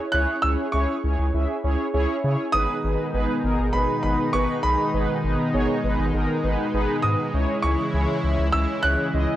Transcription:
0.00 0.16 G#6 loud
0.12 0.26 C#2 loud
0.12 0.37 C#4 loud
0.12 0.36 E4 medium
0.12 0.37 G#4 medium
0.12 0.37 C#5 loud
0.12 0.44 F#6 loud
0.42 0.56 C#2 loud
0.42 0.67 C#4 medium
0.42 0.67 E4 medium
0.42 0.67 G#4 medium
0.42 0.67 C#5 medium
0.42 0.49 E6 medium
0.72 0.86 C#2 loud
0.72 0.97 C#4 loud
0.72 0.97 E4 medium
0.72 0.97 G#4 medium
0.72 0.97 C#5 loud
0.72 1.89 C#6 medium
1.04 1.16 C#2 loud
1.04 1.27 C#4 medium
1.04 1.27 E4 medium
1.04 1.27 G#4 medium
1.04 1.27 C#5 medium
1.19 1.31 C#2 loud
1.34 1.46 C#2 loud
1.34 1.57 C#4 medium
1.34 1.57 E4 medium
1.34 1.57 G#4 medium
1.34 1.57 E5 medium
1.64 1.76 C#2 loud
1.64 1.87 C#4 loud
1.64 1.87 E4 medium
1.64 1.87 G#4 medium
1.64 1.87 C#5 loud
1.94 2.06 C#2 loud
1.94 2.17 C#4 loud
1.94 2.17 E4 loud
1.94 2.17 G#4 loud
1.94 2.17 C#5 loud
2.24 2.36 C#3 loud
2.24 2.47 C#4 loud
2.24 2.47 E4 medium
2.24 2.47 G#4 medium
2.24 2.47 C#5 loud
2.52 2.66 G#1 loud
2.52 7.30 B2 medium
2.52 7.30 D#3 medium
2.52 9.36 G#3 medium
2.52 2.77 B3 loud
2.52 2.77 D#4 medium
2.52 7.30 D#4 medium
2.52 2.77 G#4 medium
2.52 2.77 B4 loud
2.52 3.77 D#6 loud
2.84 2.96 G#1 loud
2.84 3.07 B3 medium
2.84 3.07 D#4 medium
2.84 3.07 G#4 medium
2.84 3.07 B4 medium
3.14 3.26 G#1 loud
3.14 3.37 B3 loud
3.14 3.37 D#4 medium
3.14 3.37 G#4 medium
3.14 3.37 B4 loud
3.44 3.56 G#1 loud
3.44 3.67 B3 medium
3.44 3.67 D#4 medium
3.44 3.67 G#4 medium
3.44 3.67 A#4 loud
3.59 3.71 G#1 loud
3.73 3.86 G#1 loud
3.73 3.97 B3 medium
3.73 3.97 D#4 medium
3.73 3.97 G#4 medium
3.73 3.97 B4 medium
3.73 4.01 B5 medium
4.03 4.16 G#1 loud
4.03 4.27 B3 medium
4.03 4.27 D#4 medium
4.03 4.27 G#4 medium
4.03 4.27 B4 medium
4.03 4.34 B5 medium
4.33 4.46 G#1 loud
4.33 4.57 B3 loud
4.33 4.57 D#4 medium
4.33 4.57 G#4 medium
4.33 4.57 B4 loud
4.33 4.64 C#6 loud
4.63 4.76 B1 medium
4.63 4.87 B3 medium
4.63 4.87 D#4 medium
4.63 4.87 G#4 medium
4.63 4.87 B4 medium
4.63 5.80 B5 loud
4.94 5.06 G#1 loud
4.94 5.17 B3 loud
4.94 5.17 D#4 medium
4.94 5.17 G#4 medium
4.94 5.17 B4 loud
5.24 5.36 G#1 loud
5.24 5.47 B3 medium
5.24 5.47 D#4 medium
5.24 5.47 G#4 medium
5.24 5.47 B4 medium
5.54 5.66 G#1 loud
5.54 5.77 B3 loud
5.54 5.77 D#4 loud
5.54 5.77 G#4 loud
5.54 5.77 C#5 loud
5.84 5.96 G#1 loud
5.84 6.07 B3 loud
5.84 6.07 D#4 medium
5.84 6.07 G#4 medium
5.84 6.07 B4 loud
5.99 6.11 G#1 loud
6.14 6.26 G#1 loud
6.14 6.37 B3 medium
6.14 6.37 D#4 medium
6.14 6.37 G#4 medium
6.14 6.37 A#4 loud
6.44 6.56 G#1 loud
6.44 6.67 B3 medium
6.44 6.67 D#4 medium
6.44 6.67 G#4 medium
6.44 6.67 B4 loud
6.74 6.86 G#1 loud
6.74 6.97 B3 loud
6.74 6.97 D#4 loud
6.74 6.97 G#4 loud
6.74 6.97 B4 loud
7.02 7.16 G#2 medium
7.02 7.27 B3 medium
7.02 7.27 D#4 medium
7.02 7.27 G#4 medium
7.02 7.27 B4 medium
7.02 7.65 D#6 medium
7.34 7.46 C#2 loud
7.34 9.36 C#3 medium
7.34 9.36 E3 medium
7.34 7.57 C#4 loud
7.34 7.57 E4 medium
7.34 9.36 E4 medium
7.34 7.57 G#4 medium
7.34 7.57 C#5 loud
7.62 7.76 C#2 loud
7.62 7.87 C#4 medium
7.62 7.87 E4 medium
7.62 7.87 G#4 medium
7.62 7.87 C#5 medium
7.62 8.56 C#6 medium
7.94 8.06 C#2 loud
7.94 8.17 C#4 loud
7.94 8.17 E4 medium
7.94 8.17 G#4 medium
7.94 8.17 C#5 loud
8.24 8.36 C#2 loud
8.24 8.47 C#4 medium
8.24 8.47 E4 medium
8.24 8.47 G#4 medium
8.24 8.47 C#5 medium
8.39 8.51 C#2 loud
8.52 8.66 C#2 loud
8.52 8.77 C#4 medium
8.52 8.77 E4 medium
8.52 8.77 G#4 medium
8.52 8.77 C#5 medium
8.52 8.84 E6 loud
8.83 8.96 C#2 loud
8.83 9.07 C#4 medium
8.83 9.07 E4 medium
8.83 9.07 G#4 medium
8.83 9.07 C#5 medium
8.83 9.36 F#6 loud
9.14 9.26 C#2 medium
9.14 9.36 C#4 loud
9.14 9.36 E4 medium
9.14 9.36 G#4 medium
9.14 9.36 D#5 loud

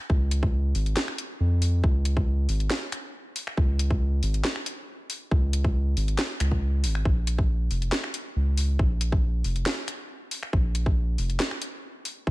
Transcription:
0.10 0.74 C#2 loud
0.10 kick loud
0.31 closed hi-hat medium
0.43 kick loud
0.75 0.95 G#1 loud
0.75 open hi-hat medium
0.86 closed hi-hat soft
0.97 snare loud
0.97 clap medium
1.08 finger snap medium
1.18 closed hi-hat medium
1.40 1.82 F2 medium
1.62 open hi-hat medium
1.84 2.48 C#2 loud
1.84 kick loud
2.05 closed hi-hat medium
2.17 kick loud
2.49 2.69 G#1 medium
2.49 open hi-hat medium
2.60 closed hi-hat soft
2.70 snare loud
2.70 clap medium
2.92 finger snap medium
2.92 closed hi-hat medium
3.36 open hi-hat loud
3.47 finger snap medium
3.57 4.21 C#2 loud
3.57 kick loud
3.79 closed hi-hat medium
3.91 kick loud
4.23 4.43 G#1 loud
4.23 open hi-hat medium
4.34 closed hi-hat soft
4.45 snare loud
4.45 clap medium
4.56 finger snap medium
4.66 closed hi-hat medium
5.10 open hi-hat loud
5.31 5.95 C#2 loud
5.31 kick loud
5.53 closed hi-hat medium
5.64 kick loud
5.97 6.17 G#1 loud
5.97 open hi-hat medium
6.08 closed hi-hat soft
6.18 snare loud
6.18 clap medium
6.40 6.85 C#2 loud
6.40 finger snap medium
6.40 closed hi-hat medium
6.51 kick medium
6.84 7.04 G#1 medium
6.84 open hi-hat loud
6.95 finger snap medium
7.05 7.69 A#1 loud
7.05 kick loud
7.27 closed hi-hat medium
7.38 kick loud
7.71 7.91 F1 medium
7.71 open hi-hat medium
7.82 closed hi-hat soft
7.92 snare loud
7.92 clap medium
8.04 finger snap soft
8.14 closed hi-hat medium
8.36 8.78 C#2 medium
8.57 open hi-hat loud
8.79 9.43 A#1 loud
8.79 kick loud
9.01 closed hi-hat medium
9.12 kick loud
9.44 9.65 F1 medium
9.44 open hi-hat medium
9.56 closed hi-hat soft
9.66 snare loud
9.66 clap loud
9.88 finger snap medium
9.88 closed hi-hat medium
10.31 open hi-hat medium
10.43 finger snap soft
10.53 11.17 A#1 loud
10.53 kick loud
10.75 closed hi-hat medium
10.86 kick loud
11.18 11.38 F1 medium
11.18 open hi-hat medium
11.30 closed hi-hat soft
11.40 snare loud
11.40 clap medium
11.51 finger snap medium
11.62 closed hi-hat medium
12.05 open hi-hat medium
12.27 12.31 A#1 loud
12.27 kick loud

